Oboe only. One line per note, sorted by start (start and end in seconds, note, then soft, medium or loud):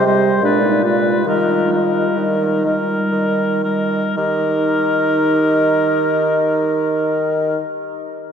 0.06 0.43 C5 soft
0.45 0.83 B4 soft
0.84 1.25 B4 soft
1.28 1.71 A#4 soft
1.72 2.63 A#4 soft
2.65 3.63 A#4 soft
3.64 4.16 A#4 soft
4.17 7.58 A#4 soft